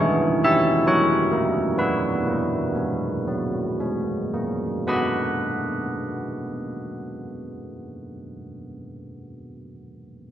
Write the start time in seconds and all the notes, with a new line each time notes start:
Already playing: C#5
0.00 E3 G#4
0.44 E4 E5
0.87 F#3 A#4 C#5
1.32 A#3
1.78 B3 F#4 B4
2.27 A#3
2.75 G#3
3.28 F#3
3.80 G#3
4.34 A#3
4.87 B3 F#4 D#5 F#5 B5